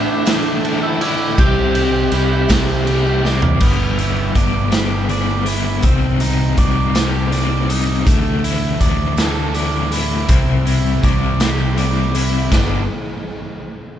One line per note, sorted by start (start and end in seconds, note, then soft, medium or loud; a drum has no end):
0.00 0.28 E3 medium
0.00 0.26 A3 medium
0.00 0.27 A3 medium
0.00 0.86 D4 loud
0.00 0.26 E4 medium
0.00 2.12 E4 medium
0.00 0.79 D6 medium
0.08 shaker soft
0.26 0.62 D3 medium
0.26 0.64 E3 medium
0.26 1.38 A3 medium
0.26 0.65 A3 medium
0.26 0.66 E4 medium
0.26 snare loud
0.26 ride medium
0.26 shaker loud
0.45 shaker soft
0.63 1.36 D3 medium
0.63 1.05 E3 medium
0.63 1.02 A3 medium
0.63 1.01 E4 medium
0.63 1.38 A4 medium
0.63 ride medium
0.83 1.00 E4 medium
0.83 1.00 E6 medium
1.01 1.39 E3 medium
1.01 1.37 A3 medium
1.01 1.36 E4 medium
1.01 1.41 E4 medium
1.01 1.42 D5 medium
1.01 1.36 E6 medium
1.01 ride medium
1.38 2.09 C2 loud
1.38 2.13 C3 medium
1.38 1.77 G3 loud
1.38 2.50 C4 medium
1.38 1.75 C4 loud
1.38 1.73 E4 loud
1.38 3.21 G4 loud
1.38 3.21 G6 medium
1.38 kick loud
1.38 ride medium
1.38 shaker medium
1.75 2.50 G3 medium
1.75 2.49 C4 medium
1.75 2.48 E4 medium
1.75 ride medium
1.94 shaker soft
2.12 2.47 C2 loud
2.12 3.61 E4 medium
2.12 ride medium
2.49 3.57 C2 loud
2.49 2.84 C3 medium
2.49 2.85 G3 medium
2.49 2.86 C4 medium
2.49 3.61 C4 medium
2.49 2.88 E4 medium
2.49 kick medium
2.49 snare loud
2.49 ride loud
2.49 shaker loud
2.85 3.58 C3 medium
2.85 3.24 G3 medium
2.85 3.23 C4 medium
2.85 3.21 E4 medium
2.85 3.62 G4 medium
2.85 ride medium
2.85 shaker soft
3.06 shaker soft
3.22 3.60 G3 medium
3.22 3.59 C4 medium
3.22 3.58 E4 medium
3.22 3.61 D5 medium
3.22 snare medium
3.22 shaker soft
3.42 floor tom medium
3.60 4.32 G1 medium
3.60 4.35 G2 medium
3.60 4.33 D3 medium
3.60 4.01 G3 medium
3.60 5.47 B3 medium
3.60 3.99 B3 medium
3.60 3.98 D4 loud
3.60 kick loud
3.60 crash loud
3.98 4.35 G3 medium
3.98 4.36 B3 medium
3.98 4.37 D4 medium
3.98 5.46 E4 medium
3.98 closed hi-hat medium
4.35 5.80 G1 medium
4.35 5.07 D3 medium
4.35 4.73 G3 medium
4.35 4.72 B3 medium
4.35 4.71 D4 medium
4.35 5.10 D5 medium
4.35 kick medium
4.35 closed hi-hat medium
4.71 5.09 G3 medium
4.71 5.10 B3 medium
4.71 5.12 D4 medium
4.71 5.85 G4 medium
4.71 snare medium
4.71 closed hi-hat medium
5.09 5.82 D3 medium
5.09 5.48 G3 medium
5.09 5.46 B3 medium
5.09 5.45 D4 medium
5.09 5.87 D5 medium
5.09 closed hi-hat medium
5.46 5.83 G3 medium
5.46 5.82 B3 medium
5.46 5.87 D4 medium
5.46 5.84 E4 medium
5.46 closed hi-hat medium
5.83 6.55 C2 medium
5.83 6.57 C3 medium
5.83 6.23 G3 medium
5.83 7.70 C4 medium
5.83 6.22 C4 medium
5.83 kick loud
5.83 closed hi-hat medium
5.87 6.20 D#4 loud
6.20 6.57 G3 medium
6.20 6.58 C4 medium
6.20 7.69 D#4 medium
6.20 6.59 D#4 medium
6.20 closed hi-hat medium
6.58 8.03 C2 medium
6.58 7.30 C3 medium
6.58 6.97 G3 medium
6.58 6.95 C4 medium
6.58 6.94 D#4 medium
6.58 7.31 D5 medium
6.58 kick medium
6.58 closed hi-hat medium
6.95 7.32 G3 medium
6.95 7.33 C4 medium
6.95 7.34 D#4 medium
6.95 8.07 G4 medium
6.95 snare loud
6.95 closed hi-hat medium
7.32 8.04 C3 medium
7.32 7.71 G3 medium
7.32 7.69 C4 medium
7.32 7.68 D#4 medium
7.32 8.47 D5 medium
7.32 closed hi-hat medium
7.69 8.06 G3 medium
7.69 8.05 C4 medium
7.69 8.05 D#4 medium
7.69 8.07 D#4 medium
7.69 closed hi-hat medium
8.06 8.77 D2 loud
8.06 8.78 D3 loud
8.06 8.46 E3 medium
8.06 9.93 A3 medium
8.06 8.44 A3 loud
8.06 8.43 E4 loud
8.06 kick loud
8.06 closed hi-hat medium
8.06 shaker medium
8.44 8.80 E3 medium
8.44 8.81 A3 medium
8.44 8.82 E4 medium
8.44 9.92 E4 medium
8.44 closed hi-hat medium
8.44 shaker soft
8.79 10.25 D2 medium
8.79 9.53 D3 medium
8.79 9.20 E3 medium
8.79 9.18 A3 medium
8.79 9.17 E4 medium
8.79 9.55 D5 medium
8.79 kick medium
8.79 closed hi-hat medium
8.79 shaker soft
9.17 9.55 E3 medium
9.17 9.55 A3 medium
9.17 9.57 E4 medium
9.17 10.29 A4 medium
9.17 snare medium
9.17 closed hi-hat medium
9.17 shaker loud
9.54 10.26 D3 medium
9.54 9.94 E3 medium
9.54 9.92 A3 medium
9.54 9.90 E4 medium
9.54 10.32 D5 medium
9.54 closed hi-hat medium
9.73 shaker soft
9.91 10.28 E3 medium
9.91 10.28 A3 medium
9.91 10.30 E4 medium
9.91 10.66 E4 medium
9.91 closed hi-hat medium
10.27 11.00 C2 loud
10.27 11.01 C3 medium
10.27 10.67 G3 medium
10.27 10.65 C4 loud
10.27 12.15 C4 medium
10.27 10.64 E4 loud
10.27 kick loud
10.27 closed hi-hat medium
10.27 shaker medium
10.47 shaker soft
10.65 11.02 G3 medium
10.65 11.03 C4 medium
10.65 11.04 E4 medium
10.65 12.14 E4 medium
10.65 closed hi-hat medium
11.02 12.48 C2 loud
11.02 11.75 C3 medium
11.02 11.41 G3 medium
11.02 11.40 C4 medium
11.02 11.39 E4 medium
11.02 11.77 D5 medium
11.02 kick medium
11.02 closed hi-hat medium
11.02 shaker soft
11.40 11.76 G3 medium
11.40 11.77 C4 medium
11.40 11.79 E4 medium
11.40 12.52 G4 medium
11.40 snare loud
11.40 closed hi-hat medium
11.40 shaker loud
11.76 12.49 C3 medium
11.76 12.16 G3 medium
11.76 12.14 C4 medium
11.76 12.13 E4 medium
11.76 12.52 D5 medium
11.76 closed hi-hat medium
11.76 shaker soft
11.97 shaker soft
12.14 12.51 G3 medium
12.14 12.50 C4 medium
12.14 12.49 E4 medium
12.14 12.52 E4 medium
12.14 closed hi-hat medium
12.33 shaker soft
12.52 12.86 G1 medium
12.52 12.81 G2 medium
12.52 12.82 D3 loud
12.52 12.81 G3 medium
12.52 12.82 G3 medium
12.52 12.82 B3 loud
12.52 12.82 B3 medium
12.52 12.82 D4 loud
12.52 kick medium
12.52 snare medium
12.52 crash medium
12.52 shaker medium